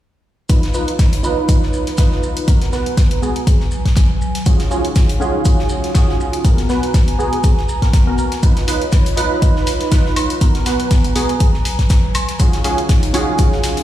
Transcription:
0.49 D#4 F4 B4 C#5 F5 B5, kick, closed hi-hat, shaker
0.63 snare, closed hi-hat
0.74 D#4 F4 B4, shaker
0.88 closed hi-hat
0.99 kick, snare, closed hi-hat, shaker
1.13 closed hi-hat
1.23 D#4 F4 B4, shaker
1.49 kick, closed hi-hat, shaker
1.63 snare
1.73 shaker
1.87 snare, closed hi-hat
1.97 D#4 F4 B4, kick, snare, closed hi-hat, shaker
2.12 snare
2.23 shaker
2.37 closed hi-hat
2.48 F#3 B3 F#4 A#4 B4 G#5 A#5, kick, closed hi-hat, shaker
2.61 snare, closed hi-hat
2.72 B3 F#4 B4, snare, shaker
2.86 closed hi-hat
2.97 kick, snare, closed hi-hat, shaker
3.11 closed hi-hat
3.22 B3 F#4 G#4, shaker
3.36 closed hi-hat
3.47 kick, closed hi-hat, shaker
3.60 snare
3.71 shaker
3.85 kick, snare, closed hi-hat
3.96 kick, snare, closed hi-hat, shaker
4.21 shaker
4.35 snare, closed hi-hat
4.46 C#4 D#4 F4 F#4 G#4 C#5 F5, kick, closed hi-hat, shaker
4.60 snare, closed hi-hat
4.71 C#4 F4 F#4 G#4, shaker
4.85 closed hi-hat
4.96 kick, snare, closed hi-hat, shaker
5.09 closed hi-hat
5.20 C#4 F4 F#4 G#4, shaker
5.45 kick, closed hi-hat, shaker
5.59 snare
5.69 shaker
5.84 snare, closed hi-hat
5.95 C#4 F4 F#4 G#4, kick, snare, closed hi-hat, shaker
6.09 snare
6.20 shaker
6.33 closed hi-hat
6.44 B3 F#4 A#4 B4 G#5 A#5, kick, closed hi-hat, shaker
6.58 snare, closed hi-hat
6.69 B3 F#4 B4, snare, shaker
6.83 closed hi-hat
6.94 kick, snare, closed hi-hat, shaker
7.08 closed hi-hat
7.19 B3 F#4 G#4, shaker
7.33 closed hi-hat
7.44 kick, closed hi-hat, shaker
7.57 snare
7.69 shaker
7.82 B3 F#4 A#4, kick, snare, closed hi-hat
7.93 kick, snare, closed hi-hat, shaker
8.07 B3 F#4 A#4
8.18 shaker
8.32 snare, closed hi-hat
8.43 D#4 F4 B4 C#5 D#5 B5, kick, closed hi-hat, shaker
8.57 snare, closed hi-hat
8.67 D#4 F4 B4, open hi-hat, shaker
8.82 closed hi-hat
8.92 kick, snare, closed hi-hat, shaker
9.06 closed hi-hat
9.17 D#4 F4 B4, open hi-hat, shaker
9.42 kick, closed hi-hat, shaker
9.56 snare
9.67 open hi-hat, shaker
9.80 snare, closed hi-hat
9.91 D#4 F4 B4, kick, snare, closed hi-hat, shaker
10.06 snare
10.16 open hi-hat, high woodblock, shaker
10.30 closed hi-hat
10.41 F#3 B3 F#4 A#4 B4 G#5 A#5, kick, closed hi-hat, shaker
10.55 snare, closed hi-hat
10.66 B3 F#4 B4, snare, open hi-hat, shaker
10.80 closed hi-hat
10.91 kick, snare, closed hi-hat, shaker
11.04 closed hi-hat
11.15 B3 F#4 G#4, open hi-hat, shaker
11.29 closed hi-hat
11.40 kick, closed hi-hat, shaker
11.54 snare
11.65 open hi-hat, shaker
11.79 kick, snare, closed hi-hat
11.89 kick, snare, closed hi-hat, shaker
12.15 open hi-hat, high woodblock, shaker
12.29 snare, closed hi-hat
12.39 C#4 D#4 F4 F#4 G#4 C#5 F5, kick, closed hi-hat, shaker
12.53 snare, closed hi-hat
12.64 C#4 F4 F#4 G#4, open hi-hat, shaker
12.78 closed hi-hat
12.89 kick, snare, closed hi-hat, shaker
13.03 closed hi-hat
13.13 C#4 F4 F#4 G#4, open hi-hat, shaker
13.38 kick, closed hi-hat, shaker
13.52 snare
13.63 snare, open hi-hat, shaker
13.77 closed hi-hat

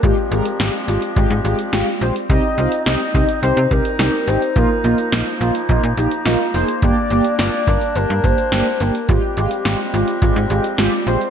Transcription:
Already playing: G3
0.03 G#1 F3 G#3 C4 F4 G4, kick, closed hi-hat
0.31 G#1 G#3 F4 A#4, closed hi-hat
0.45 closed hi-hat
0.59 G#1 G#3 F4 G4, snare, closed hi-hat
0.88 G#1 G#3 F4 G4, closed hi-hat
1.02 closed hi-hat
1.16 G#1 G#3 F4 G4, kick, closed hi-hat
1.30 G#2
1.44 G#1 G#3 F4 G4, closed hi-hat
1.59 closed hi-hat
1.72 G#1 G#3 F4 G4, snare, closed hi-hat
2.01 A#1 G#3 F4 G4 C5, closed hi-hat
2.16 closed hi-hat
2.29 C2 C4 D#4 G4 D#5, kick, closed hi-hat
2.57 C2 C4 D#4 F4, closed hi-hat
2.72 closed hi-hat
2.86 C2 C4 D#4 G4 D#5, snare, closed hi-hat
3.14 C2 C4 D#4 G4, kick, closed hi-hat
3.29 closed hi-hat
3.42 C2 C4 D#4 G4 C5, closed hi-hat
3.57 C3
3.71 C2 C4 D#4 G4 A#4, kick, closed hi-hat
3.85 closed hi-hat
3.99 C2 C4 D#4 G4, snare, closed hi-hat
4.27 G#1 C4 D#4 G4 C5, closed hi-hat
4.42 closed hi-hat
4.55 A#1 F3 A#3 D#4 F4 A#4, kick, closed hi-hat
4.84 A#1 A#3 D#4 F4, closed hi-hat
4.98 closed hi-hat
5.12 A#1 A#3 D#4 F4, snare, closed hi-hat
5.40 A#1 A#3 D#4 F4, closed hi-hat
5.55 closed hi-hat
5.69 A#1 A#3 D#4 F4, kick, closed hi-hat
5.83 A#2
5.97 A#1 A#3 D#4 G4, closed hi-hat
6.11 closed hi-hat
6.26 A#1 A#3 D#4 F4, snare, closed hi-hat
6.54 F1 A#3 D#4 G#4 C5, open hi-hat
6.69 closed hi-hat
6.82 G1 G3 A#3 D4 G4 D5, kick, closed hi-hat
7.10 G1 A#3 D4 G4, closed hi-hat
7.25 closed hi-hat
7.39 G1 A#3 D4 F4 D5, snare, closed hi-hat
7.67 G1 A#3 D4 A#4, kick, closed hi-hat
7.81 closed hi-hat
7.95 G1 A#3 D4 G4 A#4, closed hi-hat
8.10 G2
8.24 G1 A#3 D4 G4 C5, kick, closed hi-hat
8.38 closed hi-hat
8.52 G1 A#3 D4 G4, snare, closed hi-hat
8.80 G1 A#3 D4 G4 A#4, closed hi-hat
8.95 closed hi-hat
9.08 G#1 F3 G#3 C4 F4 G4, kick, closed hi-hat
9.37 G#1 G#3 F4 G4, closed hi-hat
9.51 closed hi-hat
9.65 G#1 G#3 F4 G4, snare, closed hi-hat
9.93 G#1 G#3 F4 G4, closed hi-hat
10.08 closed hi-hat
10.22 G#1 G#3 F4 G4, kick, closed hi-hat
10.36 G#2
10.50 G#1 G#3 F4 G4, closed hi-hat
10.64 closed hi-hat
10.78 G#1 G#3 F4 G4, snare, closed hi-hat
11.07 A#1 G#3 F4 G4 C5, closed hi-hat
11.21 closed hi-hat

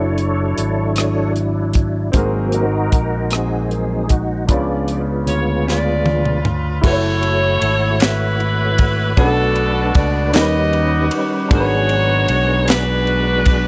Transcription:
Already playing: F#1 F#3 D4 E4 F#4 A4 C#5
0.18 closed hi-hat
0.58 G#1, closed hi-hat
0.96 cross-stick, closed hi-hat
1.36 closed hi-hat
1.73 kick, closed hi-hat
2.12 G#1 G#2 F#3 A#3 C4 F#4 G#4, kick, closed hi-hat
2.17 A#4
2.52 D#4 F#4 A#4, closed hi-hat
2.92 A#1, kick, closed hi-hat
3.30 C4 D#4 G#4, cross-stick, closed hi-hat
3.71 F#3 A#3 C4, closed hi-hat
4.09 F#4, kick, closed hi-hat
4.47 C#2 C#3 F3 G#3 B3 D4 F4 B4 D5, kick, closed hi-hat
4.52 C#4
4.88 closed hi-hat
5.27 D2 C#5, closed hi-hat
5.67 F4 B4 D5, snare
6.04 D3 F3 B3, high tom
6.25 mid tom
6.45 mid tom
6.81 F#1 A3 E4 F#4 A4 C#5, kick, crash
6.85 E4 A4 B4 C#5
6.93 C#5
7.23 ride
7.62 G#1, ride
8.00 E4 B4, snare, clap, ride
8.40 ride
8.78 kick, ride
9.16 B1 B2 A3 C#4 D4 F#4 A4 B4, kick, ride
9.23 D4
9.55 ride
9.95 C#2 D5, kick, ride
10.32 D#2 D#3 G3 C#4 D#4 F#4 G4 A#4 D#5, snare, clap, ride
10.41 B4
10.73 ride
11.11 ride
11.48 G#1 G#2 F#3 B3 D4 F#4 G#4, kick, ride
11.52 F#4 A#4 C#5
11.60 B4
11.89 ride
12.28 B1, ride
12.68 D4 F#4 B4, snare, clap, ride
13.07 ride
13.45 kick, ride

